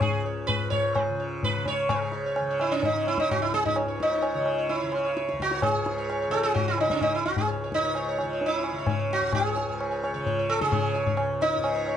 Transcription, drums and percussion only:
0.01 tabla na, tabla ge
0.49 tabla tin, tabla ge
0.72 tabla tin, tabla ge
0.95 tabla na, tabla ge
1.43 tabla tin, tabla ge
1.66 tabla tin, tabla ge
1.89 tabla na, tabla ge
2.12 tabla te
2.36 tabla na
2.60 tabla na
2.83 tabla tin, tabla ge
3.07 tabla na
3.18 tabla ke
3.31 tabla na, tabla ge
3.54 tabla te
3.66 tabla ge
3.76 tabla na
4.00 tabla ke
4.12 tabla te
4.22 tabla na
4.46 tabla na
4.69 tabla tin
4.92 tabla na
5.17 tabla te
5.29 tabla te
5.40 tabla ke
5.51 tabla te
5.62 tabla na, tabla ge
5.86 tabla te
6.10 tabla na
6.32 tabla na
6.56 tabla tin, tabla ge
6.78 tabla na
6.90 tabla ke
7.01 tabla na, tabla ge
7.26 tabla te
7.37 tabla ge
7.48 tabla na
7.72 tabla ke
7.84 tabla te
7.95 tabla na
8.19 tabla na
8.41 tabla tin
8.64 tabla na
8.87 tabla na, tabla ge
9.11 tabla te
9.33 tabla na, tabla ge
9.57 tabla te
9.81 tabla na
10.04 tabla na
10.26 tabla tin, tabla ge
10.49 tabla na
10.61 tabla ke
10.72 tabla na, tabla ge
10.96 tabla te
11.07 tabla ge
11.17 tabla na
11.41 tabla te
11.64 tabla na
11.86 tabla na

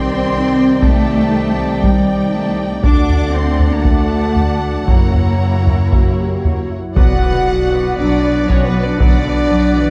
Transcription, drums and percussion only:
0.82 taiko
1.84 taiko
2.84 taiko
3.09 taiko low
3.59 taiko low
3.85 taiko
4.36 taiko low
4.88 taiko
5.14 taiko low
5.67 taiko low
5.93 taiko
6.45 taiko low
6.96 taiko
8.50 taiko
9.00 taiko

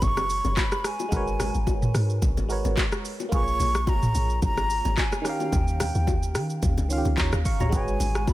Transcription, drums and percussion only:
0.02 kick, low conga, shaker
0.17 cross-stick, low bongo, shaker
0.30 open hi-hat, shaker
0.44 low bongo, shaker
0.57 kick, clap, high bongo, shaker
0.72 cross-stick, shaker
0.84 cross-stick, open hi-hat, shaker
1.00 high bongo, shaker
1.12 kick, low conga, shaker
1.27 shaker
1.40 cross-stick, open hi-hat, low conga, shaker
1.54 shaker
1.67 kick, high bongo, shaker
1.82 mid tom, shaker
1.95 cross-stick, open hi-hat, shaker
2.10 shaker
2.22 kick, low conga, shaker
2.37 low bongo, shaker
2.50 open hi-hat, shaker
2.65 low bongo, shaker
2.77 kick, clap, high bongo, shaker
2.92 cross-stick, shaker
3.05 open hi-hat, shaker
3.20 high bongo, shaker
3.32 kick, low conga, shaker
3.48 shaker
3.60 open hi-hat, low conga, shaker
3.75 cross-stick, shaker
3.87 kick, high bongo, shaker
4.03 mid tom, shaker
4.15 open hi-hat, shaker
4.30 shaker
4.42 kick, low conga, shaker
4.57 cross-stick, low bongo, shaker
4.70 open hi-hat, shaker
4.85 low bongo, shaker
4.97 kick, clap, high bongo, shaker
5.12 cross-stick, shaker
5.25 cross-stick, open hi-hat, shaker
5.40 high bongo, shaker
5.52 kick, low conga, shaker
5.68 shaker
5.80 cross-stick, open hi-hat, low conga, shaker
5.95 shaker
6.07 kick, high bongo, shaker
6.23 shaker
6.35 cross-stick, open hi-hat, shaker
6.50 shaker
6.62 kick, low conga, shaker
6.78 low bongo, shaker
6.90 open hi-hat, shaker
7.05 low bongo, shaker
7.17 kick, clap, high bongo, shaker
7.32 cross-stick, shaker
7.45 kick, open hi-hat, shaker
7.60 mid tom, high bongo, shaker
7.72 kick, low conga, shaker
7.88 shaker
8.00 open hi-hat, low conga, shaker
8.15 cross-stick, shaker
8.27 kick, high bongo, shaker

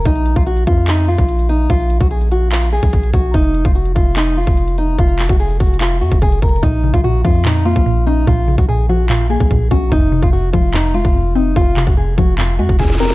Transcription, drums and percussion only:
0.05 kick, closed hi-hat
0.16 closed hi-hat
0.26 closed hi-hat
0.36 kick, closed hi-hat
0.46 closed hi-hat
0.57 closed hi-hat
0.67 kick, closed hi-hat
0.88 clap, closed hi-hat
0.98 closed hi-hat
1.18 kick, closed hi-hat
1.29 closed hi-hat
1.39 closed hi-hat
1.49 closed hi-hat
1.70 kick, closed hi-hat
1.80 closed hi-hat
1.90 closed hi-hat
2.01 kick, closed hi-hat
2.11 closed hi-hat
2.21 closed hi-hat
2.31 closed hi-hat
2.52 clap, closed hi-hat
2.62 closed hi-hat
2.83 kick, closed hi-hat
2.93 kick, closed hi-hat
3.03 closed hi-hat
3.14 kick, closed hi-hat
3.34 kick, closed hi-hat
3.44 closed hi-hat
3.54 closed hi-hat
3.65 kick, closed hi-hat
3.75 closed hi-hat
3.85 closed hi-hat
3.96 kick, closed hi-hat
4.16 clap, closed hi-hat
4.27 closed hi-hat
4.47 kick, closed hi-hat
4.57 closed hi-hat
4.68 closed hi-hat
4.78 closed hi-hat
4.99 kick, closed hi-hat
5.09 closed hi-hat
5.19 clap, closed hi-hat
5.29 kick, closed hi-hat
5.40 closed hi-hat
5.50 closed hi-hat
5.60 kick, closed hi-hat, open hi-hat
5.67 closed hi-hat
5.74 closed hi-hat
5.81 clap, closed hi-hat
5.91 closed hi-hat
6.11 kick, closed hi-hat
6.22 kick, closed hi-hat
6.32 closed hi-hat
6.42 kick, closed hi-hat
6.49 closed hi-hat
6.56 closed hi-hat
6.63 kick
6.94 kick
7.25 kick
7.45 clap
7.76 kick
8.27 kick
8.58 kick
9.10 clap
9.40 kick
9.51 kick
9.71 kick
9.92 kick
10.23 kick
10.53 kick
10.74 clap
11.05 kick
11.56 kick
11.77 clap
11.87 kick
12.18 kick
12.38 clap
12.69 kick
12.79 kick, snare
12.85 snare
12.90 snare
12.95 snare
13.00 snare
13.05 snare
13.10 snare

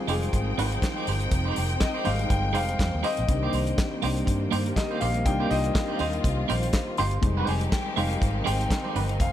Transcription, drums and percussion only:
0.08 open hi-hat
0.23 closed hi-hat
0.33 kick, closed hi-hat
0.59 open hi-hat
0.72 closed hi-hat
0.82 kick, snare, clap, closed hi-hat
1.07 open hi-hat
1.20 closed hi-hat
1.31 kick, closed hi-hat
1.56 open hi-hat
1.70 closed hi-hat
1.80 kick, snare, clap, closed hi-hat
2.05 open hi-hat
2.19 closed hi-hat
2.30 kick, closed hi-hat
2.55 open hi-hat
2.69 closed hi-hat
2.79 kick, snare, clap, closed hi-hat
3.04 open hi-hat
3.17 closed hi-hat
3.29 kick, closed hi-hat
3.53 open hi-hat
3.67 closed hi-hat
3.78 kick, snare, clap, closed hi-hat
4.02 open hi-hat
4.17 closed hi-hat
4.27 kick, closed hi-hat
4.52 open hi-hat
4.66 closed hi-hat
4.76 kick, snare, clap, closed hi-hat
5.01 open hi-hat
5.14 closed hi-hat
5.26 kick, closed hi-hat
5.51 open hi-hat
5.64 closed hi-hat
5.75 kick, snare, clap, closed hi-hat
5.99 open hi-hat
6.13 closed hi-hat
6.24 kick, closed hi-hat
6.50 open hi-hat
6.63 closed hi-hat
6.73 kick, snare, clap, closed hi-hat
6.97 open hi-hat
7.11 closed hi-hat
7.23 kick, closed hi-hat
7.47 open hi-hat
7.61 closed hi-hat
7.72 kick, snare, clap, closed hi-hat
7.97 open hi-hat
8.11 closed hi-hat
8.22 kick, closed hi-hat
8.47 open hi-hat
8.61 closed hi-hat
8.70 kick, snare, clap, closed hi-hat
8.96 open hi-hat
9.09 closed hi-hat
9.20 kick, closed hi-hat

